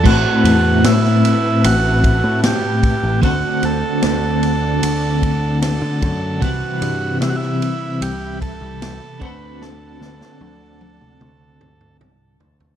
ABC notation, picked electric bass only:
X:1
M:4/4
L:1/16
Q:1/4=75
K:Dmix
V:1 name="Picked electric bass" clef=bass
A,,, z E,,2 A,,2 z2 A,,,3 A,,2 z2 A,,, | D,, z D,, z D,,4 D,,4- D,, D, F,,2 | C,, z G,,2 C,2 z2 C,,3 C,,2 z D,,2- | D,,2 D,, z D,,4 D,,4 C,,2 D,,2 |]